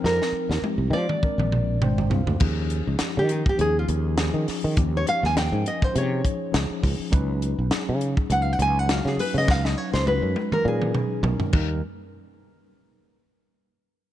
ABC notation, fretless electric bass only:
X:1
M:4/4
L:1/16
Q:"Swing 16ths" 1/4=102
K:Bbmix
V:1 name="Fretless electric bass" clef=bass
F,, z2 E,, z C,, F, z2 B,,,3 A,,,2 C,, D,, | [K:Dblyd] E,,3 D,, z E,2 z E,,2 E,,3 E, z E, | E,,2 z E,,2 A,, z2 C,2 z2 D,, z D,, z | D,,3 _C,, z D,2 z D,,2 D,,3 D, z D, |
D,,2 z D,,2 _G,, z2 B,,2 z2 _C,, z E,,2 | z16 |]